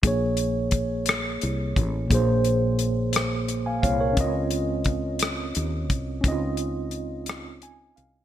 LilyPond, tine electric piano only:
\new Staff \with { instrumentName = "Tine electric piano" } { \time 6/8 \key bes \minor \tempo 4. = 58 << { r2. | r2 r16 <f'' aes''>16 <des'' f''>16 <bes' des''>16~ | <bes' des''>16 r2 r8. | r2 aes''8 f''8 | } \\ { <bes aes' des''>2. | <bes, bes aes' c''>2. | <c' des' f' ees''>2. | <c' des' ees' f' ees''>2. | } >> }